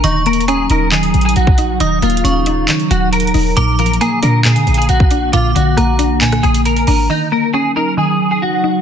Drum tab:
HH |x-----x-x-x-x-----x-----x--x--x-x-x-x-----x-----|x-----x-x-x-x-----x-----x--x--x-----x-x-x-o-----|x-----x-x-x-x-----x-----x--x--x-x-x-x-----x-----|x-----x-----x-----x-----x--x--x--x--x--x--o-----|
CP |------------------------x-----------------------|------------------------x-----------------------|------------------------x-----------------------|------------------------x-----------------------|
SD |------------------------------------------------|------------------------------------------------|------------------------------------------------|------------r--------------r--------------------|
BD |---------------------------------------o--------|------------------------------------------------|---------------------------------------o--------|------------------------------------------------|

HH |------------------------------------------------|
CP |------------------------------------------------|
SD |------------------------------------------------|
BD |------------------------------------------------|